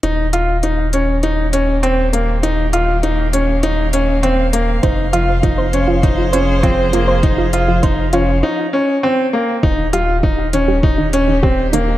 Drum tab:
HH |xxxxxxxx|xxxxxxxx|xxxxxxxx|xxxx----|
BD |--------|--------|o-o-o-o-|o-o-----|

HH |-x-x-x-x|
BD |o-o-o-o-|